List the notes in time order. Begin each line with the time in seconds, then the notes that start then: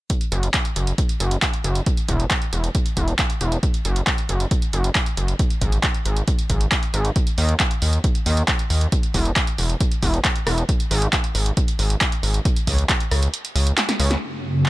0.10 kick, closed hi-hat
0.21 closed hi-hat
0.32 F#1, closed hi-hat
0.43 closed hi-hat
0.54 kick, clap, closed hi-hat
0.65 closed hi-hat
0.76 F#1, closed hi-hat
0.87 closed hi-hat
0.98 kick, closed hi-hat
1.09 closed hi-hat
1.20 F#1, closed hi-hat
1.31 closed hi-hat
1.42 kick, clap, closed hi-hat
1.54 closed hi-hat
1.64 F#1, closed hi-hat
1.75 closed hi-hat
1.86 kick, closed hi-hat
1.97 closed hi-hat
2.08 E1, kick, closed hi-hat
2.20 closed hi-hat
2.31 kick, clap, closed hi-hat
2.42 closed hi-hat
2.53 E1, closed hi-hat
2.64 closed hi-hat
2.75 kick, closed hi-hat
2.86 closed hi-hat
2.97 E1, kick, closed hi-hat
3.08 closed hi-hat
3.19 kick, clap, closed hi-hat
3.30 closed hi-hat
3.41 E1, closed hi-hat
3.52 closed hi-hat
3.63 kick, closed hi-hat
3.74 closed hi-hat
3.85 F#1, closed hi-hat
3.96 closed hi-hat
4.07 kick, clap, closed hi-hat
4.18 closed hi-hat
4.29 F#1, closed hi-hat
4.40 closed hi-hat
4.51 kick, closed hi-hat
4.62 closed hi-hat
4.73 F#1, closed hi-hat
4.84 closed hi-hat
4.95 kick, clap, closed hi-hat
5.06 closed hi-hat
5.17 F#1, closed hi-hat
5.28 closed hi-hat
5.39 kick, closed hi-hat
5.50 closed hi-hat
5.61 G#1, kick, closed hi-hat
5.72 closed hi-hat
5.83 kick, clap, closed hi-hat
5.94 closed hi-hat
6.06 G#1, closed hi-hat
6.17 closed hi-hat
6.28 kick, closed hi-hat
6.39 closed hi-hat
6.50 G#1, kick, closed hi-hat
6.61 closed hi-hat
6.72 kick, clap, closed hi-hat
6.83 closed hi-hat
6.94 G#1, closed hi-hat
7.05 closed hi-hat
7.16 kick, closed hi-hat
7.27 closed hi-hat
7.38 D#2, open hi-hat
7.49 closed hi-hat
7.60 kick, clap, closed hi-hat
7.71 closed hi-hat
7.82 D#2, open hi-hat
7.93 closed hi-hat
8.04 kick, closed hi-hat
8.15 closed hi-hat
8.26 D#2, open hi-hat
8.37 closed hi-hat
8.48 kick, clap, closed hi-hat
8.59 closed hi-hat
8.70 D#2, open hi-hat
8.81 closed hi-hat
8.92 kick, closed hi-hat
9.03 closed hi-hat
9.14 E1, kick, open hi-hat
9.25 closed hi-hat
9.36 kick, clap, closed hi-hat
9.47 closed hi-hat
9.58 E1, open hi-hat
9.70 closed hi-hat
9.81 kick, closed hi-hat
9.92 closed hi-hat
10.03 E1, kick, open hi-hat
10.14 closed hi-hat
10.25 kick, clap, closed hi-hat
10.36 closed hi-hat
10.47 E1, cross-stick, open hi-hat
10.58 closed hi-hat
10.69 kick, closed hi-hat
10.80 closed hi-hat
10.91 G#1, open hi-hat
11.02 closed hi-hat
11.13 kick, clap, closed hi-hat
11.24 closed hi-hat
11.35 G#1, open hi-hat
11.46 closed hi-hat
11.57 kick, closed hi-hat
11.68 closed hi-hat
11.79 G#1, open hi-hat
11.90 closed hi-hat
12.01 kick, clap, closed hi-hat
12.12 closed hi-hat
12.23 G#1, open hi-hat
12.34 closed hi-hat
12.45 kick, closed hi-hat
12.56 closed hi-hat
12.67 C#2, kick, open hi-hat
12.78 closed hi-hat
12.89 kick, clap, closed hi-hat
13.00 closed hi-hat
13.11 C#2, cross-stick, open hi-hat
13.23 closed hi-hat
13.34 closed hi-hat
13.45 closed hi-hat
13.56 C#2, open hi-hat
13.67 closed hi-hat
13.78 snare, clap, closed hi-hat
13.89 snare, closed hi-hat
14.00 C#2, open hi-hat
14.11 snare, closed hi-hat
14.22 F#2 C#3 A#3 F#4 C#5
14.66 clap